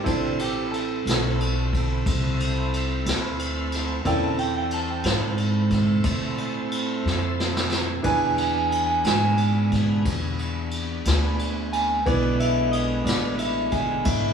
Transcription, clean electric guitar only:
0, 0, Header, 1, 2, 480
1, 0, Start_track
1, 0, Key_signature, 0, "minor"
1, 0, Tempo, 666963
1, 39, Time_signature, 12, 3, 24, 8
1, 10314, End_track
2, 0, Start_track
2, 0, Title_t, "Clean electric guitar"
2, 0, Program_c, 0, 27
2, 53, Note_on_c, 0, 62, 93
2, 279, Note_off_c, 0, 62, 0
2, 292, Note_on_c, 0, 67, 74
2, 513, Note_off_c, 0, 67, 0
2, 516, Note_on_c, 0, 69, 92
2, 1928, Note_off_c, 0, 69, 0
2, 2929, Note_on_c, 0, 79, 107
2, 3040, Note_off_c, 0, 79, 0
2, 3050, Note_on_c, 0, 81, 84
2, 3155, Note_off_c, 0, 81, 0
2, 3158, Note_on_c, 0, 79, 74
2, 3275, Note_off_c, 0, 79, 0
2, 3288, Note_on_c, 0, 79, 91
2, 3400, Note_off_c, 0, 79, 0
2, 3411, Note_on_c, 0, 81, 76
2, 3530, Note_off_c, 0, 81, 0
2, 3530, Note_on_c, 0, 79, 85
2, 3646, Note_off_c, 0, 79, 0
2, 3646, Note_on_c, 0, 81, 91
2, 4573, Note_off_c, 0, 81, 0
2, 5801, Note_on_c, 0, 80, 108
2, 5916, Note_off_c, 0, 80, 0
2, 5929, Note_on_c, 0, 80, 83
2, 6036, Note_off_c, 0, 80, 0
2, 6044, Note_on_c, 0, 80, 77
2, 6143, Note_off_c, 0, 80, 0
2, 6152, Note_on_c, 0, 80, 95
2, 6256, Note_off_c, 0, 80, 0
2, 6265, Note_on_c, 0, 80, 80
2, 6371, Note_off_c, 0, 80, 0
2, 6380, Note_on_c, 0, 80, 89
2, 6505, Note_off_c, 0, 80, 0
2, 6516, Note_on_c, 0, 80, 89
2, 7448, Note_off_c, 0, 80, 0
2, 8440, Note_on_c, 0, 80, 91
2, 8672, Note_off_c, 0, 80, 0
2, 8687, Note_on_c, 0, 74, 97
2, 8916, Note_off_c, 0, 74, 0
2, 8923, Note_on_c, 0, 76, 74
2, 9147, Note_off_c, 0, 76, 0
2, 9150, Note_on_c, 0, 75, 88
2, 9387, Note_off_c, 0, 75, 0
2, 9391, Note_on_c, 0, 74, 94
2, 9627, Note_off_c, 0, 74, 0
2, 9635, Note_on_c, 0, 64, 83
2, 9869, Note_off_c, 0, 64, 0
2, 9874, Note_on_c, 0, 68, 79
2, 10106, Note_on_c, 0, 64, 80
2, 10109, Note_off_c, 0, 68, 0
2, 10314, Note_off_c, 0, 64, 0
2, 10314, End_track
0, 0, End_of_file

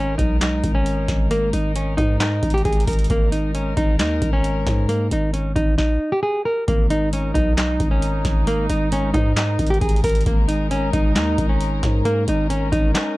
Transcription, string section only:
0, 0, Header, 1, 2, 480
1, 0, Start_track
1, 0, Tempo, 447761
1, 1402, Time_signature, 4, 2, 24, 8
1, 14118, End_track
2, 0, Start_track
2, 0, Title_t, "String section"
2, 0, Program_c, 0, 48
2, 0, Note_on_c, 0, 56, 77
2, 0, Note_on_c, 0, 63, 72
2, 0, Note_on_c, 0, 70, 87
2, 3278, Note_off_c, 0, 56, 0
2, 3278, Note_off_c, 0, 70, 0
2, 3323, Note_on_c, 0, 56, 81
2, 3323, Note_on_c, 0, 70, 87
2, 6159, Note_off_c, 0, 63, 0
2, 6173, Note_off_c, 0, 56, 0
2, 6173, Note_off_c, 0, 70, 0
2, 7161, Note_on_c, 0, 63, 75
2, 7162, Note_on_c, 0, 56, 81
2, 7162, Note_on_c, 0, 70, 88
2, 10963, Note_off_c, 0, 63, 0
2, 11001, Note_on_c, 0, 63, 75
2, 12902, Note_off_c, 0, 63, 0
2, 12921, Note_on_c, 0, 61, 76
2, 14118, Note_off_c, 0, 56, 0
2, 14118, Note_off_c, 0, 61, 0
2, 14118, Note_off_c, 0, 70, 0
2, 14118, End_track
0, 0, End_of_file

